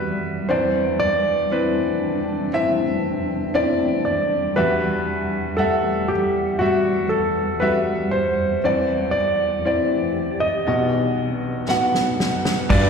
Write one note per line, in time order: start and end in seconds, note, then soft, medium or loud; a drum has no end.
0.00 0.45 E2 medium
0.00 0.46 E2 medium
0.00 0.46 E3 medium
0.00 4.53 E3 medium
0.00 0.52 G3 medium
0.00 8.60 G3 medium
0.00 0.45 F#4 medium
0.00 0.45 B4 medium
0.00 0.46 B4 medium
0.00 0.50 D5 medium
0.00 0.45 E5 medium
0.00 0.46 F#5 medium
0.00 0.52 F#5 soft
0.49 4.53 E2 medium
0.49 10.63 E2 medium
0.49 4.53 E3 soft
0.49 1.46 C4 medium
0.49 4.53 C4 medium
0.49 4.53 D4 medium
0.49 1.46 E4 medium
0.49 1.02 C5 medium
0.49 1.47 D5 medium
1.00 2.49 D5 medium
1.51 2.48 C4 medium
1.51 2.48 E4 medium
1.51 2.49 B4 medium
2.53 3.50 C4 medium
2.53 3.50 E4 medium
2.53 3.50 E5 medium
3.54 4.51 C4 medium
3.54 4.51 E4 medium
3.54 4.52 D5 medium
4.05 4.58 D5 medium
4.56 8.60 E2 medium
4.56 8.60 E3 soft
4.56 10.63 E3 medium
4.56 5.53 G3 medium
4.56 5.53 F#4 medium
4.56 5.54 B4 medium
4.56 5.54 E5 medium
4.56 8.60 F#5 medium
5.57 6.55 G3 medium
5.57 6.10 A4 medium
5.57 6.55 E5 medium
5.57 6.55 F#5 medium
6.08 6.61 G4 medium
6.59 7.57 G3 medium
6.59 7.07 F#4 medium
6.59 7.57 F#4 soft
6.59 7.57 E5 medium
7.09 7.63 A4 medium
7.60 8.58 G3 medium
7.60 8.58 F#4 medium
7.60 7.72 B4 medium
7.60 8.59 E5 medium
8.11 9.17 C5 medium
8.64 10.63 E2 soft
8.64 10.63 E3 medium
8.64 9.60 C4 medium
8.64 10.65 C4 medium
8.64 9.61 E4 medium
8.64 10.65 G4 medium
8.64 10.65 D5 medium
8.64 9.61 D5 medium
9.11 10.44 D5 medium
9.65 10.62 C4 medium
9.65 10.62 E4 medium
9.65 10.62 D5 medium
10.40 12.15 D#5 medium
10.67 12.67 B1 soft
10.67 12.66 B2 soft
10.67 12.69 B2 medium
10.67 12.68 F#3 medium
10.67 11.63 B3 medium
10.67 12.68 D#4 medium
10.67 11.64 F#4 soft
10.67 12.68 B4 medium
10.67 11.64 D#5 medium
10.67 12.68 F#5 medium
11.68 12.65 B3 medium
11.68 12.65 F#4 medium
11.68 12.65 F#5 medium
11.68 snare soft
11.95 snare soft
12.20 snare medium
12.45 snare medium
12.69 12.90 G2 medium
12.69 12.90 G2 loud
12.69 12.90 D3 medium
12.69 12.90 G3 medium
12.69 12.90 B3 medium
12.69 12.90 D4 medium
12.69 12.90 F#4 medium
12.69 12.90 A4 medium
12.69 12.90 B4 medium
12.69 12.90 D5 loud
12.69 12.90 F#5 medium
12.69 kick loud
12.69 crash loud